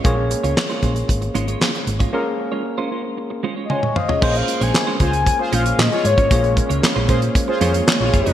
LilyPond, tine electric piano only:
\new Staff \with { instrumentName = "Tine electric piano" } { \time 4/4 \key bes \minor \tempo 4 = 115 << { r1 | r2. <ees'' aes''>8 <c'' f''>16 <aes' des''>16~ | <aes' des''>16 r2. r8. | r1 | } \\ { <bes des' aes' des''>1 | <bes des' aes' bes'>2~ <bes des' aes' bes'>8 r4. | <bes des' f' aes' c''>1 | <bes des' f' aes' des''>2~ <bes des' f' aes' des''>8 <bes c' des' f' aes' des''>4. | } >> }